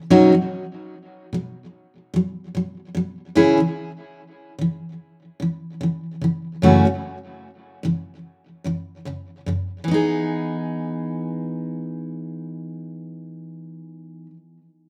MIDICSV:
0, 0, Header, 1, 2, 480
1, 0, Start_track
1, 0, Key_signature, 4, "major"
1, 0, Tempo, 816327
1, 54, Time_signature, 4, 2, 24, 8
1, 8756, End_track
2, 0, Start_track
2, 0, Title_t, "Steel-string acoustic guitar"
2, 0, Program_c, 0, 25
2, 61, Note_on_c, 0, 47, 71
2, 61, Note_on_c, 0, 54, 74
2, 64, Note_on_c, 0, 61, 78
2, 66, Note_on_c, 0, 63, 83
2, 68, Note_on_c, 0, 66, 82
2, 183, Note_off_c, 0, 47, 0
2, 189, Note_off_c, 0, 54, 0
2, 190, Note_off_c, 0, 61, 0
2, 190, Note_on_c, 0, 47, 48
2, 191, Note_off_c, 0, 63, 0
2, 192, Note_off_c, 0, 66, 0
2, 203, Note_on_c, 0, 54, 53
2, 375, Note_off_c, 0, 47, 0
2, 381, Note_off_c, 0, 54, 0
2, 780, Note_on_c, 0, 47, 47
2, 790, Note_on_c, 0, 54, 61
2, 973, Note_off_c, 0, 47, 0
2, 978, Note_off_c, 0, 54, 0
2, 1256, Note_on_c, 0, 47, 56
2, 1270, Note_on_c, 0, 54, 65
2, 1451, Note_off_c, 0, 47, 0
2, 1458, Note_off_c, 0, 54, 0
2, 1497, Note_on_c, 0, 47, 53
2, 1509, Note_on_c, 0, 54, 57
2, 1692, Note_off_c, 0, 47, 0
2, 1698, Note_off_c, 0, 54, 0
2, 1732, Note_on_c, 0, 47, 62
2, 1745, Note_on_c, 0, 54, 67
2, 1929, Note_off_c, 0, 47, 0
2, 1936, Note_off_c, 0, 54, 0
2, 1972, Note_on_c, 0, 49, 66
2, 1974, Note_on_c, 0, 52, 69
2, 1976, Note_on_c, 0, 61, 74
2, 1980, Note_on_c, 0, 64, 82
2, 1981, Note_on_c, 0, 68, 75
2, 2095, Note_off_c, 0, 49, 0
2, 2102, Note_on_c, 0, 49, 46
2, 2105, Note_off_c, 0, 52, 0
2, 2106, Note_off_c, 0, 61, 0
2, 2108, Note_off_c, 0, 64, 0
2, 2109, Note_off_c, 0, 68, 0
2, 2118, Note_on_c, 0, 52, 49
2, 2291, Note_off_c, 0, 49, 0
2, 2299, Note_off_c, 0, 52, 0
2, 2696, Note_on_c, 0, 49, 50
2, 2713, Note_on_c, 0, 52, 61
2, 2891, Note_off_c, 0, 49, 0
2, 2899, Note_off_c, 0, 52, 0
2, 3174, Note_on_c, 0, 49, 55
2, 3188, Note_on_c, 0, 52, 54
2, 3370, Note_off_c, 0, 49, 0
2, 3377, Note_off_c, 0, 52, 0
2, 3415, Note_on_c, 0, 49, 56
2, 3429, Note_on_c, 0, 52, 56
2, 3610, Note_off_c, 0, 49, 0
2, 3618, Note_off_c, 0, 52, 0
2, 3654, Note_on_c, 0, 49, 52
2, 3669, Note_on_c, 0, 52, 58
2, 3850, Note_off_c, 0, 49, 0
2, 3857, Note_off_c, 0, 52, 0
2, 3893, Note_on_c, 0, 42, 69
2, 3899, Note_on_c, 0, 49, 63
2, 3900, Note_on_c, 0, 57, 73
2, 3901, Note_on_c, 0, 52, 70
2, 3903, Note_on_c, 0, 61, 72
2, 3906, Note_on_c, 0, 66, 74
2, 4023, Note_off_c, 0, 42, 0
2, 4028, Note_off_c, 0, 49, 0
2, 4028, Note_off_c, 0, 57, 0
2, 4029, Note_off_c, 0, 52, 0
2, 4030, Note_off_c, 0, 61, 0
2, 4030, Note_on_c, 0, 42, 41
2, 4031, Note_off_c, 0, 66, 0
2, 4037, Note_on_c, 0, 49, 42
2, 4039, Note_on_c, 0, 52, 52
2, 4214, Note_off_c, 0, 42, 0
2, 4218, Note_off_c, 0, 49, 0
2, 4219, Note_off_c, 0, 52, 0
2, 4605, Note_on_c, 0, 42, 51
2, 4614, Note_on_c, 0, 49, 55
2, 4618, Note_on_c, 0, 52, 49
2, 4805, Note_off_c, 0, 42, 0
2, 4810, Note_off_c, 0, 49, 0
2, 4812, Note_off_c, 0, 52, 0
2, 5083, Note_on_c, 0, 42, 46
2, 5089, Note_on_c, 0, 49, 52
2, 5095, Note_on_c, 0, 52, 55
2, 5284, Note_off_c, 0, 42, 0
2, 5287, Note_off_c, 0, 49, 0
2, 5290, Note_off_c, 0, 52, 0
2, 5323, Note_on_c, 0, 42, 47
2, 5329, Note_on_c, 0, 49, 45
2, 5335, Note_on_c, 0, 52, 52
2, 5524, Note_off_c, 0, 42, 0
2, 5527, Note_off_c, 0, 49, 0
2, 5530, Note_off_c, 0, 52, 0
2, 5565, Note_on_c, 0, 42, 54
2, 5573, Note_on_c, 0, 49, 54
2, 5577, Note_on_c, 0, 52, 59
2, 5765, Note_off_c, 0, 42, 0
2, 5769, Note_off_c, 0, 49, 0
2, 5771, Note_off_c, 0, 52, 0
2, 5786, Note_on_c, 0, 52, 57
2, 5809, Note_on_c, 0, 59, 68
2, 5830, Note_on_c, 0, 63, 72
2, 5845, Note_on_c, 0, 68, 76
2, 8385, Note_off_c, 0, 52, 0
2, 8409, Note_off_c, 0, 59, 0
2, 8429, Note_off_c, 0, 63, 0
2, 8445, Note_off_c, 0, 68, 0
2, 8756, End_track
0, 0, End_of_file